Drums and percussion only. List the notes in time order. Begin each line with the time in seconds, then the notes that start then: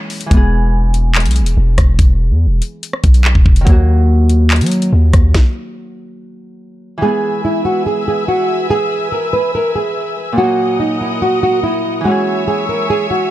0.10 open hi-hat
0.21 closed hi-hat
0.31 kick, closed hi-hat
0.94 closed hi-hat
1.15 clap, closed hi-hat
1.20 closed hi-hat
1.26 closed hi-hat
1.31 closed hi-hat
1.36 closed hi-hat
1.46 closed hi-hat
1.78 kick, cross-stick, closed hi-hat
1.99 kick, closed hi-hat
2.62 closed hi-hat
2.83 closed hi-hat
2.93 cross-stick
3.04 kick, closed hi-hat
3.14 closed hi-hat
3.25 clap
3.35 kick
3.46 kick
3.56 closed hi-hat
3.67 kick, closed hi-hat
4.29 closed hi-hat
4.51 clap, closed hi-hat
4.56 closed hi-hat
4.61 closed hi-hat
4.66 closed hi-hat
4.71 closed hi-hat
4.82 closed hi-hat
5.13 kick, cross-stick, closed hi-hat
5.34 kick, snare